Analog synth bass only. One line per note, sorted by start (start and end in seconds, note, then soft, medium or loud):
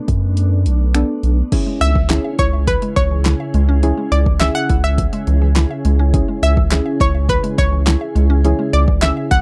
0.08 0.67 F#2 medium
0.66 1.04 B1 medium
1.23 1.42 B1 medium
1.81 2.19 C#2 medium
2.39 2.77 C#2 medium
2.96 3.35 C#2 medium
3.54 3.92 C#2 medium
4.12 4.50 C#2 medium
4.70 5.08 C#2 medium
5.27 5.66 C#2 medium
5.85 6.23 C#2 medium
6.42 6.81 C#2 medium
7.00 7.38 C#2 medium
7.58 7.96 C#2 medium
8.16 8.54 C#2 loud
8.73 9.12 C#2 medium
9.31 9.42 C#2 medium